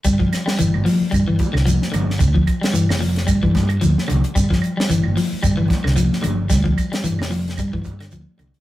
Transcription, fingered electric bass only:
X:1
M:4/4
L:1/16
Q:"Swing 16ths" 1/4=112
K:C
V:1 name="Fingered electric bass" clef=bass
G,,,2 z2 G,,, G,,, z2 G,,, G,,, z C,,2 z G,,,2 | D,,2 z2 G,, F,,,3 G,,, G,, G,,2 D,, z C,, z | G,,,2 z2 G,,, G,,, z2 G,,, G,,, z C,,2 z G,,,2 | D,,2 z2 G,, F,,,3 G,,, G,, G,,2 D,, z C,, z |]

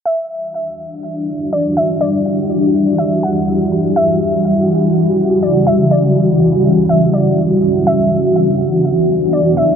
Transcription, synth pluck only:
X:1
M:4/4
L:1/8
Q:1/4=123
K:Edor
V:1 name="Synth pluck"
e2 z4 d e | d4 e f3 | e2 z4 d e | d4 e d z2 |
e2 z4 d e |]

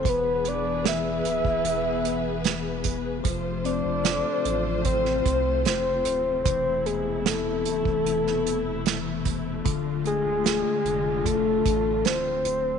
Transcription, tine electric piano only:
X:1
M:4/4
L:1/8
Q:1/4=75
K:Am
V:1 name="Tine electric piano"
E, B, ^G2 B,4 | F, C A2 C4 | E, B, E,2 B,4 | D, A, F2 A,4 |]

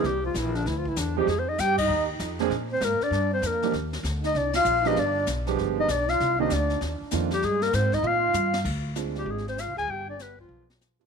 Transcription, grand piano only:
X:1
M:4/4
L:1/8
Q:"Swing" 1/4=195
K:Cm
V:1 name="Grand piano"
z6 z [F,A,CEG] | z6 z [F,B,CDA] | z6 z [F,B,DEG] | z6 z [F,A,=B,DG] |
z3 [F,A,=B,DG]3 z2 | z [E,B,CDG] z4 [E,B,CDF] z | z8 | z2 [A,CDF]3 z3 |
z6 z [G,=B,DF] |]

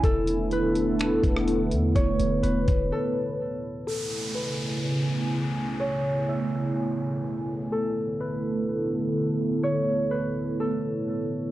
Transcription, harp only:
X:1
M:4/4
L:1/8
Q:1/4=125
K:A
V:1 name="Harp"
A2 B6 | c2 B2 A2 z2 | A2 B6 | c2 e4 z2 |
A2 B6 | c2 B2 A2 z2 |]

